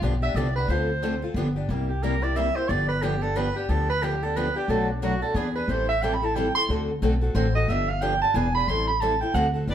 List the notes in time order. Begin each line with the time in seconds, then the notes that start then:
0.02 B1 D3 F3 B3 D4 G4
0.22 B3 D4 G4 E5
0.34 C2 D3 F3 B3 D4 G4 D5
0.56 B3 D4 G4 B4
0.68 D2 D3 F3 A3 C4 D4 F4 A4 C5
1.02 D3 F3 A3 C4 D4 F4 A4
1.22 C4 F4 A4
1.34 G1 D3 F3 B3 D4 G4
1.56 B3 D4 G4
1.69 C2 C3 G3 A#3 E4 G4
1.89 G4
2.03 C3 G3 A#3 E4 G4 A#4
2.22 A#3 E4 G4 D5
2.36 C3 G3 A#3 E4 G4 E5
2.55 A#3 E4 G4 C5
2.69 G1 D3 F3 B3 D4 G4 D5
2.88 B4
3.02 D3 F3 B3 D4 G4
3.21 B3 D4 G4 A4
3.35 D3 F3 B3 D4 G4 B4
3.56 B3 D4 G4
3.69 D2 D3 F3 B3 D4 G4 A4
3.90 B4
4.02 D3 F3 B3 D4 G4
4.23 B3 D4 G4 A4
4.36 D3 F3 B3 D4 G4 B4
4.56 B3 D4 G4
4.68 B1 B2 F#3 A3 D4 F#4 A4 B4
4.90 D4
5.02 B2 F#3 A3 D4 F#4 B4
5.22 A3 D4 F#4 A4
5.34 E2 E3 B3 D4 G#4 B4
5.55 B3 D4 G#4 B4
5.68 A1 E3 G3 C4 E4 A4 C5
5.89 E5
6.02 E3 G3 C4 E4 A4 G5
6.14 B5
6.22 C4 E4 A4 A5
6.35 E3 G3 C4 E4 A4 G5
6.55 C4 E4 A4 C6
6.69 D2 D3 A3 C4 F#4 A4
7.02 B1 D3 A3 C4 F#4 A4
7.21 C4 F#4 A4
7.35 A1 D3 A3 C4 F#4 A4 C5
7.55 C4 F#4 A4 D#5
7.68 G1 D3 F3 B3 D4 G4 E5
7.88 F5
8.01 D3 F3 B3 D4 G4 G5
8.22 B3 D4 G4 A5
8.34 E1 E3 B3 D4 G#4 B4 G#5
8.54 B3 D4 G#4 B5
8.67 A1 E3 G3 C4 E4 A4 C6
8.87 B5
9.01 E3 G3 C4 E4 A4 A5
9.21 C4 E4 A4 G5
9.34 D2 D3 A3 C4 F#4 A4 F#5
9.54 C4 F#4 A4
9.68 G1 D3 F3 B3 D4 G4 B4 D5